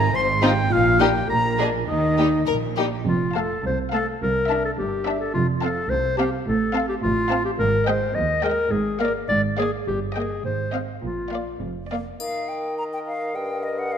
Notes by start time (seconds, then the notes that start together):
Already playing: A#4 A#5
0.13 G#1 G#2 C5 C6
0.42 F3 C4 D#4 F4 G4 G5
0.70 A#1 A#2 F4 F5
1.00 G3 A#3 D#4 G4 G5
1.28 A#1 A#2 A#4 A#5
1.58 G#3 A#3 D4 G#4
1.88 D#2 D#3 D#4 D#5
2.18 G3 A#3 D#4 G4
2.47 A#1 A#2 A#4
2.77 G3 A#3 D#4 G4
3.07 F1 F2 F4
3.36 A3 A4 F5 A5
3.65 C2 C5
3.92 A3 A4 F5 A5
4.22 C2 A#4
4.49 D4 E5 A5
4.65 A4
4.78 G1 G2 G4
5.06 D4 E5 A5
5.20 A4
5.34 F1 F2 F4
5.62 C4 A4 F5 A5
5.90 C2 C5
6.18 C4 G4 F5 A5
6.46 A1 A2 A4
6.74 C4 F5 A5
6.89 G4
7.02 A1 A2 F4
7.31 C4 F5 A5
7.45 G4
7.59 G#1 G#2 A#4
7.87 G#3 C5 D#5 G5
8.15 D#2 D#5
8.43 G#3 A#4 D#5 G5
8.71 G#1 G#2 G#4
9.00 A#3 A#4 D5 F5
9.29 G#1 G#2 D5
9.58 A#3 G#4 D5 F5
9.87 G1 G2 G4
10.16 A#3 G#4 D#5 G5
10.44 G#1 G#2 C5
10.73 C4 D#5 F5
11.03 A#1 A#2 F4
11.32 A#3 D5 F5
11.61 F1 F2
11.90 A#3 D5 F5
12.20 D#3 A#4 D#5 F5, triangle
12.49 G5
12.78 A#5
12.93 G5
13.07 F5
13.35 G2 G5
13.63 D#5
13.79 F#5
13.92 F5